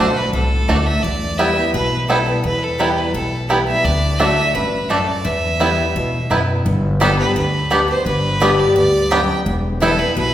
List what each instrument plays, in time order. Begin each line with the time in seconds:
Already playing: steel-string acoustic guitar D3, fiddle C5
0.00 upright bass B1, steel-string acoustic guitar A3 D4 F#4
0.17 fiddle B4
0.33 upright bass C2, steel-string acoustic guitar A2, fiddle A4
0.68 upright bass D2, steel-string acoustic guitar D3 A3 D4 F#4, mandolin A3 F#4 D5 A5, five-string banjo A3 D4
0.86 fiddle E5
1.03 upright bass E2, steel-string acoustic guitar E2, fiddle D5
1.38 steel-string acoustic guitar E3 G3 B3 E4, five-string banjo G3 B3 E4, mandolin B3 E4 B4 G5, fiddle E5
1.56 steel-string acoustic guitar B3 E4
1.73 upright bass B1, steel-string acoustic guitar B2, fiddle B4
2.08 steel-string acoustic guitar E3 G3 B3 E4, five-string banjo G3 B3 E4, mandolin B3 E4 B4 G5, fiddle A4
2.26 steel-string acoustic guitar B3 E4
2.44 steel-string acoustic guitar E2, upright bass E2, fiddle B4
2.63 fiddle A4
2.78 steel-string acoustic guitar E3 G3 B3 E4, five-string banjo G3 B3 E4, mandolin B3 E4 B4 G5, fiddle G4
2.98 fiddle B4
3.14 upright bass B1, steel-string acoustic guitar B2, fiddle A4
3.49 steel-string acoustic guitar E3 G3 B3 E4, five-string banjo G3 B3 E4, mandolin B3 E4 B4 G5, fiddle G4
3.67 steel-string acoustic guitar B3 E4, fiddle E5
3.84 upright bass D2, steel-string acoustic guitar D3, fiddle D5
4.19 steel-string acoustic guitar D3 A3 D4 F#4, mandolin A3 F#4 D5 A5, five-string banjo A3 D4, fiddle E5
4.54 upright bass A1, steel-string acoustic guitar G2, fiddle B4
4.89 steel-string acoustic guitar F#2, mandolin A3 F#4 D5 A5, five-string banjo A3 D4, fiddle A4
5.08 fiddle D5
5.25 steel-string acoustic guitar E2, upright bass E2, fiddle E5
5.60 steel-string acoustic guitar E3 G3 B3 E4, five-string banjo G3 B3 E4, mandolin B3 E4 B4 G5
5.95 upright bass E2, steel-string acoustic guitar B2
6.30 upright bass F#2, steel-string acoustic guitar E3 B3 E4, five-string banjo G3 B3 E4, mandolin B3 E4 B4 G5
6.66 upright bass G1, steel-string acoustic guitar G2
7.00 steel-string acoustic guitar D3 G3 B3 G4, five-string banjo G3 B3 D4, mandolin B3 G4 D5 G5, fiddle A4
7.19 fiddle B4
7.36 upright bass D2, steel-string acoustic guitar D3, fiddle B4
7.70 steel-string acoustic guitar D3 G3 B3 G4, five-string banjo G3 B3 D4, mandolin B3 G4 D5 G5
7.88 steel-string acoustic guitar B3 G4, fiddle C5
8.06 upright bass G1, steel-string acoustic guitar G2, fiddle B4
8.40 steel-string acoustic guitar D3 G3 B3 G4, five-string banjo G3 B3 D4, mandolin B3 G4 D5 G5
8.59 fiddle D5
8.76 upright bass D2, steel-string acoustic guitar G2, fiddle D5
9.10 steel-string acoustic guitar F#2, five-string banjo G3 B3 D4, mandolin B3 G4 D5 G5, fiddle G5
9.46 upright bass E1, steel-string acoustic guitar E2
9.80 steel-string acoustic guitar E3 G3 B3 E4, five-string banjo G3 B3 E4, mandolin B3 E4 B4 G5, fiddle A4
9.99 steel-string acoustic guitar B3 E4, fiddle B4
10.16 upright bass B1, steel-string acoustic guitar B2, fiddle B4